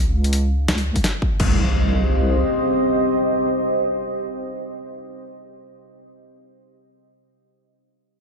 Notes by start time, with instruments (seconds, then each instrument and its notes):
Already playing: wobble bass C#2, ambient pad C#4 G#4 D#5 F5
0.24 closed hi-hat
0.33 closed hi-hat
0.68 wobble bass C#2, snare, closed hi-hat
0.78 closed hi-hat
0.96 kick, closed hi-hat
1.04 snare, closed hi-hat
1.22 kick
1.40 wobble bass C2, ambient pad C4 G4 C5 D#5, kick, crash, impact